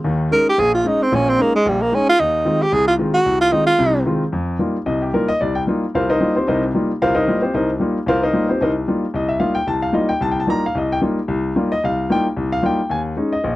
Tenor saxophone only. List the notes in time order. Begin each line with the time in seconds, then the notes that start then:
0.32 A#4
0.49 G4
0.60 G#4
0.74 F4
0.88 D#4
1.03 C4
1.15 C#4
1.29 C4
1.41 A#3
1.56 G#3
1.68 G3
1.82 A#3
1.95 C#4
2.09 F4
2.20 D#4
2.62 G4
2.73 G#4
2.88 F4
3.14 F#4
3.41 F4
3.52 D#4
3.67 F4